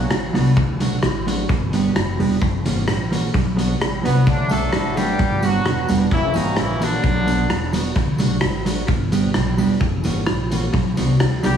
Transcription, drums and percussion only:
0.10 cross-stick loud
0.10 closed hi-hat medium
0.35 cross-stick medium
0.35 open hi-hat medium
0.57 kick loud
0.57 closed hi-hat medium
0.80 closed hi-hat medium
1.03 cross-stick loud
1.03 closed hi-hat medium
1.28 closed hi-hat medium
1.49 kick loud
1.49 closed hi-hat medium
1.73 closed hi-hat medium
1.96 cross-stick loud
1.96 closed hi-hat medium
2.20 open hi-hat medium
2.42 kick loud
2.42 closed hi-hat medium
2.66 closed hi-hat medium
2.88 cross-stick loud
2.88 closed hi-hat medium
3.12 closed hi-hat medium
3.34 kick loud
3.34 closed hi-hat medium
3.59 closed hi-hat medium
3.81 cross-stick loud
3.81 closed hi-hat medium
4.05 closed hi-hat medium
4.27 kick loud
4.27 closed hi-hat medium
4.49 closed hi-hat medium
4.49 tambourine medium
4.73 cross-stick loud
4.73 closed hi-hat medium
4.97 closed hi-hat medium
4.97 tambourine medium
5.19 kick loud
5.19 closed hi-hat medium
5.43 closed hi-hat medium
5.43 tambourine medium
5.65 cross-stick loud
5.65 closed hi-hat medium
5.89 closed hi-hat medium
5.89 tambourine medium
6.11 kick loud
6.11 closed hi-hat medium
6.34 closed hi-hat medium
6.34 tambourine medium
6.57 cross-stick loud
6.57 closed hi-hat medium
6.82 closed hi-hat loud
6.82 tambourine medium
7.04 kick loud
7.04 closed hi-hat medium
7.27 closed hi-hat medium
7.27 tambourine medium
7.50 cross-stick loud
7.50 closed hi-hat medium
7.73 closed hi-hat loud
7.73 tambourine medium
7.95 kick loud
7.95 closed hi-hat medium
8.18 closed hi-hat medium
8.18 tambourine medium
8.41 cross-stick loud
8.41 closed hi-hat medium
8.66 closed hi-hat medium
8.66 tambourine medium
8.88 kick loud
8.88 closed hi-hat medium
9.12 closed hi-hat medium
9.12 tambourine medium
9.34 cross-stick loud
9.34 closed hi-hat medium
9.58 open hi-hat medium
9.58 tambourine medium
9.81 kick loud
9.81 closed hi-hat medium
10.04 closed hi-hat medium
10.04 tambourine medium
10.27 cross-stick loud
10.27 closed hi-hat medium
10.51 closed hi-hat medium
10.51 tambourine medium
10.74 kick loud
10.74 closed hi-hat medium
10.97 closed hi-hat medium
10.97 tambourine medium
11.20 cross-stick loud
11.20 closed hi-hat medium
11.43 cross-stick medium
11.43 closed hi-hat medium
11.43 tambourine medium

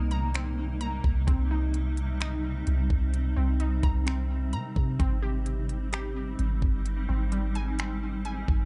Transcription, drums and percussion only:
0.11 closed hi-hat medium
0.34 finger snap loud
0.34 closed hi-hat medium
0.81 closed hi-hat medium
1.04 kick loud
1.28 kick loud
1.28 closed hi-hat medium
1.74 closed hi-hat medium
1.97 closed hi-hat medium
2.21 finger snap loud
2.21 closed hi-hat medium
2.67 closed hi-hat medium
2.90 kick loud
3.14 closed hi-hat medium
3.60 closed hi-hat medium
3.83 kick loud
3.83 closed hi-hat medium
4.07 finger snap loud
4.07 closed hi-hat medium
4.53 closed hi-hat medium
4.76 kick loud
5.00 kick loud
5.00 closed hi-hat medium
5.46 closed hi-hat medium
5.69 closed hi-hat medium
5.93 finger snap loud
5.93 closed hi-hat medium
6.39 closed hi-hat medium
6.62 kick medium
6.86 closed hi-hat medium
7.32 closed hi-hat medium
7.55 closed hi-hat medium
7.79 finger snap loud
7.79 closed hi-hat medium
8.25 closed hi-hat medium
8.48 kick loud

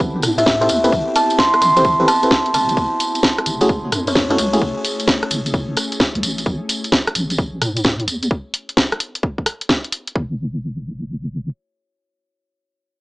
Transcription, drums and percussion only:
0.00 kick loud
0.00 tambourine soft
0.22 cross-stick medium
0.22 open hi-hat loud
0.22 tambourine medium
0.38 closed hi-hat medium
0.38 tambourine medium
0.46 kick loud
0.46 snare loud
0.46 tambourine soft
0.62 closed hi-hat medium
0.69 open hi-hat loud
0.69 tambourine loud
0.84 closed hi-hat medium
0.84 tambourine medium
0.92 kick loud
0.92 tambourine soft
1.16 open hi-hat loud
1.16 tambourine loud
1.30 closed hi-hat medium
1.30 tambourine medium
1.39 kick loud
1.39 snare loud
1.39 tambourine soft
1.54 cross-stick medium
1.54 closed hi-hat soft
1.62 open hi-hat loud
1.62 tambourine loud
1.76 closed hi-hat medium
1.76 tambourine medium
1.84 kick loud
1.84 tambourine soft
2.08 cross-stick medium
2.08 open hi-hat loud
2.08 tambourine medium
2.23 closed hi-hat medium
2.23 tambourine medium
2.31 kick loud
2.31 snare loud
2.46 closed hi-hat medium
2.54 open hi-hat loud
2.54 tambourine loud
2.69 closed hi-hat medium
2.69 tambourine medium
2.77 kick loud
2.77 tambourine soft
3.00 open hi-hat loud
3.00 tambourine medium
3.15 closed hi-hat medium
3.15 tambourine medium
3.23 kick loud
3.23 snare loud
3.38 cross-stick medium
3.38 closed hi-hat soft
3.46 open hi-hat loud
3.46 tambourine medium
3.61 closed hi-hat medium
3.61 tambourine soft
3.69 kick loud
3.69 tambourine soft
3.92 cross-stick medium
3.92 open hi-hat loud
3.92 tambourine medium
4.07 closed hi-hat medium
4.07 tambourine medium
4.15 kick loud
4.15 snare loud
4.31 closed hi-hat medium
4.38 open hi-hat loud
4.38 tambourine medium
4.53 closed hi-hat medium
4.53 tambourine medium
4.62 kick loud
4.62 tambourine soft
4.85 open hi-hat loud
4.85 tambourine medium
5.00 closed hi-hat medium
5.00 tambourine soft
5.08 kick loud
5.08 snare loud
5.08 tambourine soft
5.23 cross-stick medium
5.23 closed hi-hat soft
5.31 open hi-hat loud
5.31 tambourine loud
5.46 closed hi-hat medium
5.46 tambourine medium
5.54 kick loud
5.54 tambourine soft
5.77 cross-stick medium
5.77 open hi-hat loud
5.77 tambourine medium
5.92 closed hi-hat medium
5.92 tambourine soft
6.00 kick loud
6.00 snare loud
6.00 tambourine soft
6.15 closed hi-hat medium
6.23 open hi-hat loud
6.23 tambourine medium
6.38 closed hi-hat medium
6.38 tambourine soft
6.46 kick loud
6.46 tambourine soft
6.69 open hi-hat loud
6.69 tambourine medium
6.84 closed hi-hat medium
6.84 tambourine medium
6.92 kick loud
6.92 snare loud
7.07 cross-stick medium
7.07 closed hi-hat soft
7.15 open hi-hat loud
7.15 tambourine medium
7.30 closed hi-hat medium
7.30 tambourine medium
7.38 kick loud
7.38 tambourine soft
7.62 cross-stick medium
7.62 open hi-hat loud
7.62 tambourine medium
7.76 closed hi-hat medium
7.76 tambourine medium
7.84 kick loud
7.84 snare loud
7.84 tambourine soft
8.00 closed hi-hat medium
8.08 open hi-hat loud
8.08 tambourine medium
8.23 closed hi-hat medium
8.23 tambourine medium
8.31 kick loud
8.54 open hi-hat loud
8.69 closed hi-hat medium
8.77 kick loud
8.77 snare loud
8.92 cross-stick medium
8.92 closed hi-hat soft
9.00 open hi-hat loud
9.15 closed hi-hat medium
9.23 kick loud
9.38 kick medium
9.46 cross-stick medium
9.46 open hi-hat loud
9.61 closed hi-hat medium
9.69 kick loud
9.69 snare loud
9.84 closed hi-hat medium
9.92 open hi-hat loud
10.07 closed hi-hat medium
10.16 kick loud

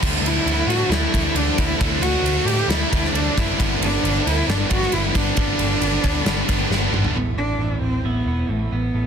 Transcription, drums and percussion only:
0.03 kick loud
0.03 splash medium
0.03 crash loud
0.26 ride medium
0.47 ride medium
0.70 ride medium
0.92 snare loud
0.92 ride loud
1.14 kick medium
1.14 ride medium
1.36 ride loud
1.58 kick medium
1.58 ride medium
1.81 kick loud
1.81 ride loud
2.03 ride medium
2.26 ride loud
2.48 ride medium
2.70 snare loud
2.70 ride loud
2.93 kick medium
2.93 ride medium
3.05 snare soft
3.15 ride loud
3.38 kick loud
3.38 ride medium
3.60 kick loud
3.60 ride loud
3.82 ride medium
4.05 ride loud
4.27 ride medium
4.50 snare loud
4.50 ride loud
4.71 kick medium
4.71 ride medium
4.82 snare soft
4.92 ride loud
5.15 kick medium
5.15 ride medium
5.37 kick loud
5.37 ride loud
5.59 ride medium
5.82 ride loud
6.04 kick medium
6.04 ride medium
6.26 snare loud
6.26 ride loud
6.49 kick medium
6.49 ride medium
6.71 snare medium
6.94 mid tom loud
7.04 floor tom medium

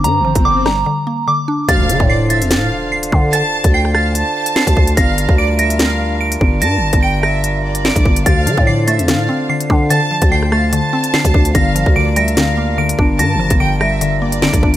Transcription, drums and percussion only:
0.04 closed hi-hat medium
0.35 kick loud
0.35 closed hi-hat medium
0.66 cross-stick medium
0.66 snare medium
1.69 kick loud
1.69 closed hi-hat medium
1.89 closed hi-hat medium
2.00 kick loud
2.30 closed hi-hat medium
2.42 closed hi-hat medium
2.51 snare loud
2.51 closed hi-hat medium
3.03 closed hi-hat medium
3.12 kick loud
3.33 closed hi-hat medium
3.64 kick loud
3.64 closed hi-hat medium
3.85 cross-stick medium
3.95 cross-stick medium
4.15 closed hi-hat medium
4.46 closed hi-hat medium
4.56 snare loud
4.67 kick medium
4.67 closed hi-hat medium
4.77 kick loud
4.87 closed hi-hat medium
4.97 kick loud
4.97 closed hi-hat medium
5.18 closed hi-hat medium
5.29 kick loud
5.59 closed hi-hat medium
5.70 closed hi-hat medium
5.79 snare loud
5.79 closed hi-hat medium
6.32 closed hi-hat medium
6.41 kick loud
6.62 closed hi-hat medium
6.93 kick loud
6.93 closed hi-hat medium
7.23 cross-stick medium
7.44 closed hi-hat medium
7.75 closed hi-hat medium
7.85 snare loud
7.96 kick medium
7.96 closed hi-hat medium
8.05 kick loud
8.16 closed hi-hat medium
8.26 kick loud
8.26 closed hi-hat medium
8.47 closed hi-hat medium
8.57 kick loud
8.88 closed hi-hat medium
8.99 closed hi-hat medium
9.08 snare loud
9.08 closed hi-hat medium
9.61 closed hi-hat medium
9.70 kick loud
9.90 closed hi-hat medium
10.22 kick loud
10.22 closed hi-hat medium
10.43 cross-stick medium
10.52 cross-stick medium
10.73 closed hi-hat medium
11.04 closed hi-hat medium
11.14 snare loud
11.25 kick medium
11.25 closed hi-hat medium
11.34 kick loud
11.45 closed hi-hat medium
11.55 kick loud
11.55 closed hi-hat medium
11.76 closed hi-hat medium
11.86 kick loud
12.16 closed hi-hat medium
12.28 closed hi-hat medium
12.37 snare loud
12.37 closed hi-hat medium
12.89 closed hi-hat medium
12.99 kick loud
13.19 closed hi-hat medium
13.50 kick loud
13.50 closed hi-hat medium
13.81 cross-stick medium
14.01 closed hi-hat medium
14.32 closed hi-hat medium
14.42 snare loud
14.53 kick medium
14.53 closed hi-hat medium
14.63 kick loud
14.74 closed hi-hat medium

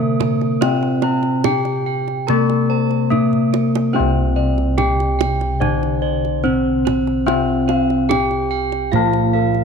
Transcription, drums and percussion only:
0.20 kendang high medium
0.20 kendang low medium
0.41 kendang slap soft
0.62 kendang high medium
0.83 kendang slap soft
1.02 kendang high medium
1.23 kendang slap soft
1.44 kendang high medium
1.44 kendang low medium
1.65 kendang slap soft
2.08 kendang slap soft
2.28 kendang low medium
2.50 kendang slap soft
2.91 kendang slap soft
3.12 kendang low medium
3.33 kendang low soft
3.54 kendang high medium
3.75 kendang high medium
4.58 kendang slap soft
4.78 kendang high medium
4.78 kendang low medium
5.00 kendang slap soft
5.21 kendang high medium
5.41 kendang slap soft
5.62 kendang low medium
5.83 kendang slap soft
6.25 kendang slap soft
6.45 kendang low soft
6.87 kendang high medium
6.87 kendang low soft
7.07 kendang slap soft
7.28 kendang high soft
7.69 kendang high soft
7.90 kendang slap soft
8.11 kendang high medium
8.11 kendang low soft
8.31 kendang slap soft
8.72 kendang slap soft
8.93 kendang low medium
9.13 kendang slap soft
9.54 kendang slap soft

